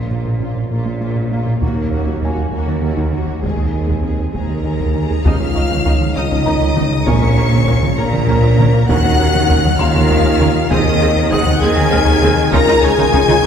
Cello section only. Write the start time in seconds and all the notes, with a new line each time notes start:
Already playing: A#2
0.71 A#2
1.61 D#2
2.52 D#2
3.44 D#2
4.35 D#2
5.25 C#2
6.17 C#2
7.07 A#2
7.98 A#2
8.89 D#3
9.80 D#3
10.70 D#3
11.62 D#3
12.53 C#3
12.68 C#3
12.83 C#3
12.98 C#3
13.13 C#3
13.28 C#3